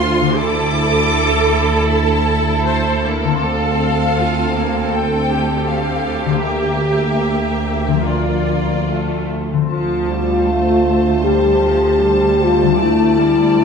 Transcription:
Already playing: cello section D2, harp D3 D4 F4 A4, violin section F4 C5 C6, viola section F4
0.21 harp D3
0.25 harp D4
0.30 harp E4
0.34 harp A4, violin section D6
0.38 violin section E4 A4, viola section A4
1.89 violin section A5
2.65 viola section C5, violin section A5
3.04 viola section A#3
3.24 harp D3
3.28 harp C4
3.33 harp D4
3.37 harp A4
3.41 cello section D2, violin section C4 F5, viola section A4
4.18 viola section F4
4.55 viola section A#3
4.91 viola section A4, violin section G5
5.30 viola section G4
5.67 violin section F5
6.26 harp D3
6.30 harp A#3
6.35 harp D4
6.39 harp G4, violin section E5
6.44 violin section A#3 G4
7.87 harp D3
7.92 harp F3
7.97 harp D4
8.01 harp F4, violin section F4 D5
8.06 viola section F4
8.90 violin section A3
9.53 harp D3
9.57 harp A3
9.62 harp C4
9.66 french horn section F4, harp A4
9.71 cello section D2, viola section F3, violin section C5 A5
10.10 viola section G3
10.49 viola section A3
10.87 viola section A3
11.25 viola section G3, french horn section G4
11.64 viola section F3
12.03 viola section G3
12.42 french horn section F4
12.63 harp D3
12.67 harp A3
12.71 harp D4
12.76 viola section A3, harp A4, violin section D5
12.81 french horn section E4
13.19 viola section G3
13.57 viola section A3

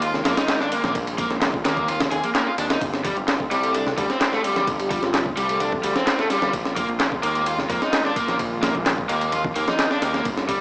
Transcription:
Already playing: analog synth bass D#2, string section D#3 G#3 A#3 C4 F4
0.02 overdriven electric guitar F4, closed hi-hat, ride
0.14 snare, low conga
0.25 analog synth bass F2, overdriven electric guitar A#3, snare, open hi-hat, ride
0.37 overdriven electric guitar D#4, snare, closed hi-hat, ride
0.48 snare, clap, closed hi-hat, ride
0.61 overdriven electric guitar D4, snare
0.72 overdriven electric guitar A#3, open hi-hat, ride
0.84 analog synth bass A#1, overdriven electric guitar A#3, snare, closed hi-hat, muted conga, high conga
0.95 analog synth bass A#1, kick, closed hi-hat, ride
1.07 ride
1.18 overdriven electric guitar A#3, kick, open hi-hat, ride, high conga
1.30 analog synth bass A#1, snare, closed hi-hat
1.42 snare, clap, closed hi-hat, ride
1.54 kick
1.65 analog synth bass D#2, overdriven electric guitar A#3, snare, open hi-hat, ride
1.77 kick, closed hi-hat
1.88 overdriven electric guitar F4, closed hi-hat, ride, muted conga
2.00 snare, ride, high conga, low conga
2.11 analog synth bass D#2, overdriven electric guitar G#4, open hi-hat
2.24 overdriven electric guitar A#3, closed hi-hat, ride, high conga
2.35 overdriven electric guitar A#3, snare, clap, closed hi-hat, ride
2.47 overdriven electric guitar F4
2.58 analog synth bass D#2, overdriven electric guitar D4, open hi-hat, ride
2.70 overdriven electric guitar D#4, snare, closed hi-hat, ride, muted conga
2.81 analog synth bass G1, string section D3 G3 A3 F4, kick, closed hi-hat, ride
2.94 snare
3.05 overdriven electric guitar G3, kick, open hi-hat, ride, high conga
3.17 analog synth bass G1, closed hi-hat
3.28 snare, clap, closed hi-hat, ride
3.40 kick
3.51 analog synth bass C2, overdriven electric guitar G3, open hi-hat, ride
3.63 vibraphone A4, closed hi-hat, ride
3.74 overdriven electric guitar D4, vibraphone A4, closed hi-hat, ride
3.87 snare, low conga
3.98 analog synth bass D2, overdriven electric guitar G3, kick, open hi-hat, ride
4.10 overdriven electric guitar C4, snare, closed hi-hat
4.21 snare, clap, closed hi-hat, ride
4.33 overdriven electric guitar A3, snare
4.44 overdriven electric guitar G3, open hi-hat, ride
4.56 analog synth bass G1, overdriven electric guitar G3, snare, closed hi-hat, muted conga, high conga
4.67 analog synth bass G1, kick, closed hi-hat, ride
4.79 vibraphone G4, ride
4.90 overdriven electric guitar G3, vibraphone F4, kick, open hi-hat, ride, high conga
5.03 analog synth bass G1, vibraphone F4, snare, closed hi-hat
5.14 snare, clap, closed hi-hat, ride
5.26 kick
5.37 analog synth bass C2, overdriven electric guitar G3, open hi-hat, ride
5.49 vibraphone A4, closed hi-hat, ride
5.60 overdriven electric guitar D4, closed hi-hat, ride, muted conga
5.72 kick, high conga, low conga
5.83 analog synth bass D2, overdriven electric guitar G3, open hi-hat, ride
5.96 overdriven electric guitar C4, snare, closed hi-hat, high conga
6.07 snare, clap, closed hi-hat, ride
6.19 overdriven electric guitar A3, snare
6.30 overdriven electric guitar G3, snare, open hi-hat, ride
6.42 analog synth bass G1, overdriven electric guitar G3, snare, closed hi-hat, muted conga
6.53 analog synth bass A#1, string section D#3 G#3 A#3, kick, closed hi-hat, ride
6.65 snare
6.76 overdriven electric guitar A#3, kick, open hi-hat, ride, high conga
6.89 analog synth bass A#1, closed hi-hat
7.00 snare, clap, closed hi-hat, ride
7.12 kick
7.23 analog synth bass D#2, overdriven electric guitar A#3, open hi-hat, ride
7.35 closed hi-hat, ride
7.46 overdriven electric guitar F4, closed hi-hat, ride
7.58 snare, low conga
7.70 analog synth bass F2, overdriven electric guitar A#3, kick, open hi-hat, ride
7.82 overdriven electric guitar D#4, snare, closed hi-hat
7.93 snare, clap, closed hi-hat, ride
8.05 overdriven electric guitar D4, snare
8.16 overdriven electric guitar A#3, kick, open hi-hat, ride
8.28 analog synth bass A#1, overdriven electric guitar A#3, snare, closed hi-hat, muted conga, high conga
8.39 analog synth bass A#1, kick, closed hi-hat, ride
8.63 overdriven electric guitar A#3, snare, open hi-hat, ride, high conga
8.75 analog synth bass A#1, kick, closed hi-hat
8.86 snare, clap, closed hi-hat, ride
8.98 kick
9.09 analog synth bass D#2, overdriven electric guitar A#3, open hi-hat, ride
9.21 closed hi-hat, ride
9.32 overdriven electric guitar F4, closed hi-hat, ride, muted conga
9.45 kick, high conga, low conga
9.56 analog synth bass D#2, overdriven electric guitar A#3, open hi-hat, ride
9.68 overdriven electric guitar D#4, snare, closed hi-hat, high conga
9.79 snare, clap, closed hi-hat, ride
9.91 overdriven electric guitar D4, snare
10.02 analog synth bass D#2, overdriven electric guitar A#3, snare, open hi-hat, ride
10.14 overdriven electric guitar A#3, snare, closed hi-hat, muted conga
10.25 analog synth bass G1, string section D3 G3 A3 C4, kick, closed hi-hat, ride
10.37 snare
10.48 overdriven electric guitar G3, kick, open hi-hat, ride, high conga

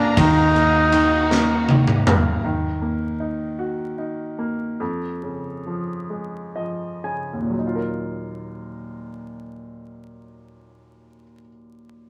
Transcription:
Already playing: grand piano A#3, flugelhorn D4, string section D4 G#4 F5 A#5
0.16 fingered electric bass D#2, grand piano D#3, string section D#4 F#4, flugelhorn D#4, kick, ride
0.54 grand piano A#3, ride
0.92 grand piano D#3, ride
1.30 grand piano A#3, snare
1.69 grand piano D#3, high tom
1.87 mid tom
2.06 grand piano A#3, mid tom
2.44 grand piano D#3
2.82 grand piano A#3
3.20 grand piano D#4
3.59 grand piano F#4
3.98 grand piano D#4
4.38 grand piano A#3
4.80 grand piano F2
5.23 grand piano C#3
5.66 grand piano F3
6.10 grand piano G#3
6.56 grand piano F3 D#5
7.04 grand piano C#3 G#5
7.33 grand piano D#2
7.41 grand piano A#2
7.50 grand piano F#3
7.59 grand piano D#4
7.67 grand piano F4
7.75 grand piano A#4

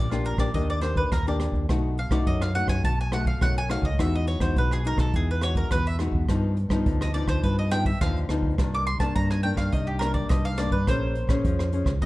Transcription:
Already playing: fingered electric bass A#1, nylon-string guitar A#2, mandolin D5
0.11 nylon-string guitar A#3 D4 G4, mandolin F4, cross-stick, closed hi-hat
0.25 mandolin A#4, closed hi-hat
0.37 fingered electric bass A#1, nylon-string guitar A#3 D4 G4, mandolin D5, kick, cross-stick
0.54 fingered electric bass D#2, nylon-string guitar D#3 A#3 D4 G4, mandolin D#5, kick, closed hi-hat
0.70 mandolin D5
0.81 nylon-string guitar A#3 D4 G4, mandolin C5, cross-stick, closed hi-hat
0.96 mandolin B4, kick, closed hi-hat
1.11 fingered electric bass D#2, nylon-string guitar A#2, mandolin A#4, kick, cross-stick, closed hi-hat
1.27 nylon-string guitar A#3 D4 G4, mandolin D5, closed hi-hat
1.40 cross-stick, closed hi-hat
1.52 fingered electric bass D#2, kick
1.69 fingered electric bass B1, nylon-string guitar B2 A3 D#4 F#4, kick, cross-stick, closed hi-hat
1.97 mandolin F5, closed hi-hat
2.09 fingered electric bass B1, nylon-string guitar A3 D#4 F#4, mandolin D5, kick, cross-stick, closed hi-hat
2.27 fingered electric bass F#2, nylon-string guitar F#2, mandolin D#5, kick, closed hi-hat
2.41 mandolin F5, cross-stick
2.55 nylon-string guitar A3 D#4 F#4, mandolin F#5, closed hi-hat
2.66 fingered electric bass F#2, mandolin G#5, kick, cross-stick
2.84 fingered electric bass B1, nylon-string guitar B2, mandolin A5, kick, closed hi-hat
3.01 mandolin G#5
3.12 nylon-string guitar A3 D#4 F#4, mandolin F#5, cross-stick, closed hi-hat
3.25 mandolin F5, kick, closed hi-hat
3.41 fingered electric bass B1, nylon-string guitar F#2 A3 D#4 F#4, mandolin F#5, kick, cross-stick, closed hi-hat
3.56 mandolin G#5, closed hi-hat
3.70 nylon-string guitar A3 D#4 F#4, mandolin F5, cross-stick, closed hi-hat
3.82 fingered electric bass C#2, mandolin D#5, kick
3.99 fingered electric bass E2, nylon-string guitar E3 G#3 D#4 F#4, mandolin E5, kick, cross-stick, closed hi-hat
4.14 mandolin D#5, closed hi-hat
4.27 mandolin C#5, closed hi-hat
4.39 fingered electric bass E2, nylon-string guitar G#3 D#4 F#4, mandolin C5, kick, cross-stick
4.56 fingered electric bass B1, nylon-string guitar B2, mandolin B4, kick, closed hi-hat
4.71 mandolin G#4, cross-stick, closed hi-hat
4.84 nylon-string guitar G#3 D#4 F#4, mandolin A#4, closed hi-hat
4.97 fingered electric bass B1, mandolin A4, kick, cross-stick
5.14 fingered electric bass E2, nylon-string guitar E3, mandolin G#4, kick, closed hi-hat
5.31 mandolin B4
5.41 nylon-string guitar G#3 D#4 F#4, mandolin C#5, cross-stick, closed hi-hat
5.55 mandolin A#4, kick, closed hi-hat
5.71 fingered electric bass E2, nylon-string guitar B2, mandolin B4, kick, cross-stick, closed hi-hat
5.86 mandolin E5, closed hi-hat
5.99 nylon-string guitar G#3 D#4 F#4, cross-stick, closed hi-hat
6.11 fingered electric bass E2, kick
6.29 fingered electric bass G2, nylon-string guitar G2 F3 B3 D#4, kick, cross-stick, closed hi-hat
6.57 closed hi-hat
6.69 fingered electric bass G2, nylon-string guitar F3 B3 D#4, kick, cross-stick, closed hi-hat
6.86 fingered electric bass D2, nylon-string guitar D3, kick, closed hi-hat
7.01 mandolin D#5, cross-stick
7.14 nylon-string guitar F3 B3 D#4, mandolin D5, closed hi-hat
7.26 fingered electric bass D2, mandolin C5, kick, cross-stick, closed hi-hat
7.43 fingered electric bass G2, nylon-string guitar G2, mandolin B4, kick, closed hi-hat
7.59 mandolin D#5
7.71 nylon-string guitar F3 B3 D#4, mandolin G5, cross-stick, closed hi-hat
7.85 mandolin E5, kick, closed hi-hat
8.01 fingered electric bass D#2, nylon-string guitar D3 F3 B3 D#4, mandolin F5, kick, cross-stick, closed hi-hat
8.16 closed hi-hat
8.29 fingered electric bass D2, nylon-string guitar F3 B3 D#4, cross-stick, closed hi-hat
8.43 kick
8.58 fingered electric bass C2, nylon-string guitar C3 D#3 A#3 D4, kick, cross-stick, closed hi-hat
8.73 mandolin D6, closed hi-hat
8.86 mandolin C6, closed hi-hat
8.99 fingered electric bass C2, nylon-string guitar D#3 A#3 D4, mandolin A5, kick, cross-stick
9.16 fingered electric bass G2, nylon-string guitar G2, mandolin A#5, kick, closed hi-hat
9.30 mandolin G#5, cross-stick
9.43 nylon-string guitar D#3 A#3 D4, mandolin G5, closed hi-hat
9.56 fingered electric bass G2, mandolin F5, kick, cross-stick
9.72 fingered electric bass C2, nylon-string guitar C3, mandolin D#5, kick, closed hi-hat
9.87 mandolin G4
9.99 nylon-string guitar D#3 A#3 D4, mandolin A#4, cross-stick, closed hi-hat
10.14 mandolin D5, kick, closed hi-hat
10.29 fingered electric bass C2, nylon-string guitar G2, mandolin D#5, kick, cross-stick, closed hi-hat
10.45 mandolin F5, closed hi-hat
10.58 nylon-string guitar D#3 A#3 D4, mandolin D5, cross-stick, closed hi-hat
10.70 fingered electric bass G2, mandolin B4, kick
10.87 fingered electric bass A#1, nylon-string guitar A#3 C#4 G#4 C5, mandolin C5, kick, cross-stick, closed hi-hat
11.15 closed hi-hat
11.27 fingered electric bass A#1, nylon-string guitar C#4 G#4 C5, kick, cross-stick, closed hi-hat
11.45 fingered electric bass F2, nylon-string guitar F3, kick, closed hi-hat
11.59 cross-stick
11.72 nylon-string guitar C#4 G#4 C5, closed hi-hat
11.85 fingered electric bass C#2, kick, cross-stick, closed hi-hat
12.02 fingered electric bass D#2, nylon-string guitar D#3 G3, mandolin D#5, kick, closed hi-hat

